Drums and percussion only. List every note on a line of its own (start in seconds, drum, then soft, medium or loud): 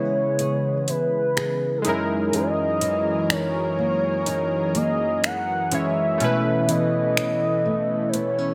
0.39 closed hi-hat medium
0.88 closed hi-hat medium
1.37 finger snap loud
1.37 closed hi-hat medium
1.85 closed hi-hat medium
2.33 closed hi-hat medium
2.81 closed hi-hat medium
3.30 finger snap loud
3.30 closed hi-hat medium
4.26 closed hi-hat medium
4.75 closed hi-hat medium
5.24 finger snap loud
5.24 closed hi-hat medium
5.72 closed hi-hat medium
6.20 closed hi-hat medium
6.69 closed hi-hat medium
7.17 finger snap loud
7.17 closed hi-hat medium
8.14 closed hi-hat medium